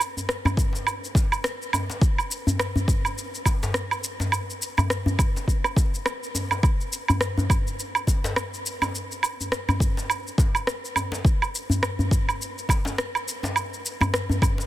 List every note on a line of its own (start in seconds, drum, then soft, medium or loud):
0.00 low woodblock medium
0.00 shaker medium
0.17 djembe tone soft
0.17 shaker soft
0.29 cross-stick medium
0.29 shaker soft
0.45 djembe bass medium
0.45 low woodblock medium
0.45 shaker soft
0.57 kick loud
0.57 djembe tone medium
0.57 shaker medium
0.73 djembe slap soft
0.73 shaker soft
0.87 low woodblock medium
0.87 shaker soft
1.04 shaker soft
1.15 kick loud
1.15 djembe slap soft
1.15 djembe tone soft
1.15 shaker medium
1.32 low woodblock medium
1.32 shaker soft
1.44 cross-stick loud
1.44 shaker soft
1.62 shaker soft
1.73 djembe tone medium
1.73 low woodblock medium
1.73 shaker medium
1.90 djembe slap soft
1.90 shaker soft
2.02 kick loud
2.02 shaker soft
2.18 low woodblock medium
2.18 shaker soft
2.31 shaker medium
2.47 djembe bass medium
2.47 shaker soft
2.60 cross-stick loud
2.60 low woodblock medium
2.60 shaker soft
2.76 djembe bass medium
2.76 shaker soft
2.88 kick loud
2.88 shaker medium
3.05 low woodblock medium
3.05 shaker soft
3.18 shaker soft
3.35 shaker soft
3.46 kick medium
3.46 djembe slap soft
3.46 low woodblock medium
3.46 shaker medium
3.63 djembe slap medium
3.63 djembe tone medium
3.63 shaker soft
3.74 cross-stick medium
3.74 shaker soft
3.91 low woodblock medium
3.91 shaker soft
4.04 shaker medium
4.20 djembe slap soft
4.20 djembe tone medium
4.20 shaker soft
4.32 low woodblock medium
4.32 shaker soft
4.50 shaker soft
4.62 shaker medium
4.77 djembe slap soft
4.77 djembe tone soft
4.77 djembe bass medium
4.77 low woodblock medium
4.77 shaker soft
4.90 cross-stick medium
4.90 shaker soft
5.06 djembe bass medium
5.06 shaker soft
5.19 kick loud
5.19 djembe tone medium
5.19 low woodblock medium
5.19 shaker medium
5.36 djembe slap soft
5.36 shaker soft
5.48 kick medium
5.48 shaker soft
5.64 cross-stick soft
5.64 low woodblock medium
5.64 shaker soft
5.77 kick medium
5.77 djembe slap soft
5.77 djembe tone soft
5.77 shaker medium
5.94 shaker soft
6.06 cross-stick medium
6.06 low woodblock medium
6.06 shaker soft
6.23 shaker soft
6.35 djembe tone medium
6.35 shaker medium
6.51 djembe slap soft
6.51 low woodblock medium
6.51 shaker soft
6.63 kick loud
6.63 low woodblock medium
6.63 shaker soft
6.81 shaker soft
6.93 shaker medium
7.08 djembe bass medium
7.08 low woodblock medium
7.08 shaker soft
7.21 cross-stick medium
7.21 shaker soft
7.38 djembe bass medium
7.38 shaker soft
7.50 kick loud
7.50 low woodblock medium
7.50 shaker medium
7.67 shaker soft
7.80 shaker soft
7.95 low woodblock medium
7.95 shaker soft
8.07 kick medium
8.07 djembe slap soft
8.07 shaker medium
8.24 djembe slap medium
8.24 djembe tone medium
8.24 shaker soft
8.36 cross-stick medium
8.36 low woodblock medium
8.36 shaker soft
8.54 shaker soft
8.66 shaker medium
8.82 djembe slap soft
8.82 djembe tone medium
8.82 low woodblock medium
8.82 shaker soft
8.95 shaker soft
9.12 shaker soft
9.23 low woodblock medium
9.23 shaker medium
9.41 djembe tone soft
9.41 shaker soft
9.52 cross-stick medium
9.52 shaker soft
9.69 djembe bass medium
9.69 low woodblock medium
9.69 shaker soft
9.80 kick loud
9.80 djembe tone medium
9.80 shaker medium
9.97 djembe slap soft
9.97 shaker soft
10.10 low woodblock medium
10.10 shaker soft
10.27 shaker soft
10.38 kick loud
10.38 djembe slap soft
10.38 djembe tone soft
10.38 shaker medium
10.55 low woodblock medium
10.55 shaker soft
10.67 cross-stick medium
10.67 shaker soft
10.85 shaker soft
10.96 djembe tone soft
10.96 low woodblock medium
10.96 shaker medium
11.12 djembe slap medium
11.12 shaker soft
11.25 kick loud
11.25 shaker soft
11.42 low woodblock medium
11.42 shaker soft
11.55 shaker medium
11.70 djembe bass medium
11.70 shaker soft
11.83 cross-stick medium
11.83 low woodblock medium
11.83 shaker soft
11.99 djembe bass medium
11.99 shaker soft
12.11 kick medium
12.11 shaker medium
12.29 low woodblock medium
12.29 shaker soft
12.42 shaker soft
12.58 shaker soft
12.69 kick medium
12.69 djembe slap soft
12.69 low woodblock medium
12.69 shaker medium
12.85 djembe slap medium
12.85 djembe tone medium
12.85 shaker soft
12.98 cross-stick loud
12.98 shaker soft
13.15 low woodblock medium
13.15 shaker soft
13.28 shaker medium
13.43 djembe slap medium
13.43 djembe tone medium
13.43 shaker soft
13.56 low woodblock medium
13.56 shaker soft
13.74 shaker soft
13.86 shaker medium
14.01 djembe slap soft
14.01 djembe tone soft
14.01 djembe bass medium
14.01 low woodblock medium
14.01 shaker soft
14.14 cross-stick loud
14.14 shaker soft
14.30 djembe bass medium
14.30 shaker soft
14.42 kick loud
14.42 djembe tone medium
14.42 low woodblock medium
14.42 shaker medium
14.58 djembe slap medium
14.58 shaker soft